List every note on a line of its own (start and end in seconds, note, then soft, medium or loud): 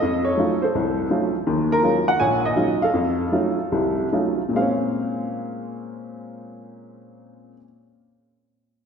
0.00 0.33 F2 medium
0.00 0.58 A4 medium
0.00 0.26 D#5 loud
0.25 0.58 C#5 medium
0.37 0.62 F#3 medium
0.37 0.62 A3 soft
0.37 0.62 C#4 soft
0.37 0.62 D#4 medium
0.37 0.62 F4 medium
0.62 1.31 A4 medium
0.62 1.30 C5 medium
0.75 1.06 C2 medium
1.10 1.34 F#3 medium
1.10 1.35 A3 soft
1.10 1.35 C#4 soft
1.10 1.35 D#4 soft
1.10 1.35 F4 medium
1.47 1.78 D#2 medium
1.47 1.78 D#3 medium
1.72 2.05 A#4 loud
1.83 2.07 F#3 medium
1.83 2.07 G#3 soft
1.83 2.07 C#4 soft
1.83 2.07 D#4 soft
1.83 2.08 F4 medium
2.08 2.20 F#5 medium
2.20 2.52 A#1 medium
2.20 2.52 A#2 medium
2.20 2.91 C#5 medium
2.20 2.42 G#5 medium
2.45 2.82 D#5 medium
2.56 2.81 F#3 medium
2.56 2.81 G#3 soft
2.56 2.82 C#4 soft
2.56 2.82 D#4 soft
2.56 2.82 F4 medium
2.82 4.37 A4 medium
2.82 4.36 F5 medium
2.93 3.27 F2 medium
3.32 3.59 F#3 soft
3.32 3.59 A3 soft
3.32 3.59 C#4 soft
3.32 3.59 D#4 soft
3.32 3.59 F4 medium
3.72 4.07 C2 medium
3.72 4.07 C3 medium
4.12 4.40 F#3 soft
4.12 4.41 A3 soft
4.12 4.41 C#4 soft
4.12 4.41 D#4 soft
4.12 4.41 F4 medium
4.49 7.52 A#2 medium
4.53 7.56 G#3 medium
4.53 7.59 C4 medium
4.53 7.55 F5 medium
4.61 7.64 C#4 medium